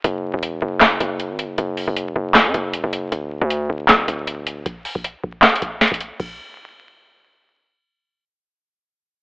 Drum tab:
CC |------------------------------------------------|------------------------------------------------|------------------------------------------------|------------------------------------------------|
HH |x-----------x-----------x-----x-----x-----x-----|x-----o-----x-----------x-----x-----x-----x-----|x-----------x-----------x-----x-----x-----x-----|x-----o-----x-----------x-x-x-x-----x-x-x-x-----|
CP |------------------------x-----------------------|------------------------x-----------------------|------------------------x-----------------------|------------------------x-----------------------|
SD |------------------------o-----------------------|------------------------o-----------------------|------------------------o-----------------------|------------------------o-----------o-----------|
BD |------------------------------------------------|------------------------------------------------|------------------------------------------------|o--------o--------o-----------o--------o--------|

CC |x-----------------------------------------------|------------------------------------------------|
HH |------------------------------------------------|------------------------------------------------|
CP |------------------------------------------------|------------------------------------------------|
SD |------------------------------------------------|------------------------------------------------|
BD |o-----------------------------------------------|------------------------------------------------|